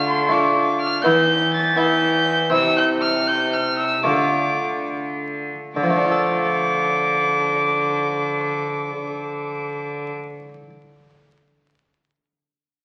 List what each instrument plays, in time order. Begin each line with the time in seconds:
Already playing: harpsichord D3 A3 D4 F4, cello D3
0.08 violin C6
0.29 harpsichord A3 D4 F4, violin D6
0.81 violin F6
1.04 cello E3, harpsichord E3 B3 E4, violin G6
1.54 violin A6
1.76 harpsichord B3 E4, violin G6
2.50 cello C3, harpsichord C3 C4 E4, violin E6
2.77 violin G6
3.01 violin F6
3.28 violin G6
3.53 violin F6
3.78 violin E6
4.04 cello D3, harpsichord D3 A3 F4, violin D6
5.76 cello D3, harpsichord D3, violin D6
5.83 harpsichord F3
5.90 harpsichord A3
5.97 harpsichord D4
6.05 harpsichord F4
6.11 harpsichord A4